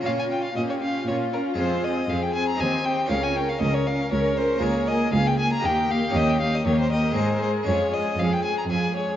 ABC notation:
X:1
M:3/4
L:1/16
Q:1/4=118
K:Bbdor
V:1 name="Violin"
f a g f e d f2 d2 B2 | c2 e2 f g a b a2 g2 | f a g f e d f2 d2 c2 | [K:Ebmix] d2 e2 f g a b g2 f2 |
e g f e d c e2 c2 c2 | d2 e2 f g a b a2 d2 |]
V:2 name="Violin section"
F4 G4 F4- | F4 A4 c4 | d4 B8- | [K:Ebmix] B4 A4 G4- |
G4 B8 | F4 A8 |]
V:3 name="Violin section"
F2 F2 F2 F2 F2 F2 | A2 A2 A2 A2 G2 G2 | B2 B2 B2 B2 B2 B2 | [K:Ebmix] A2 A2 A2 A2 G2 G2 |
G2 G2 G2 G2 A2 A2 | A2 A2 A2 A2 A2 A2 |]
V:4 name="Viola section"
D2 D2 D2 D2 D2 D2 | C2 C2 C2 C2 C2 C2 | D2 D2 D2 D2 D2 D2 | [K:Ebmix] B,2 B,2 B,2 B,2 B,2 B,2 |
B,2 B,2 B,2 B,2 A,2 A,2 | A,2 A,2 A,2 A,2 A,2 A,2 |]
V:5 name="Harpsichord"
[B,DF]12 | [A,CF]8 [CEG]4 | [DFB]12 | [K:Ebmix] [B,FA]8 [B,EG]4 |
[DEG]8 [A,CEA]4 | [A,DA]12 |]
V:6 name="Harpsichord" clef=bass
B,,4 B,,4 B,,4 | F,,4 F,,4 E,,4 | D,,4 D,,4 D,,4 | [K:Ebmix] D,,4 D,,4 E,,4 |
E,,4 E,,4 A,,4 | F,,4 F,,4 F,,4 |]
V:7 name="Cello section" clef=bass
B,,4 B,,4 B,,4 | F,,4 F,,4 E,,4 | D,,4 D,,4 D,,4 | [K:Ebmix] D,,4 D,,4 E,,4 |
E,,4 E,,4 A,,4 | F,,4 F,,4 F,,4 |]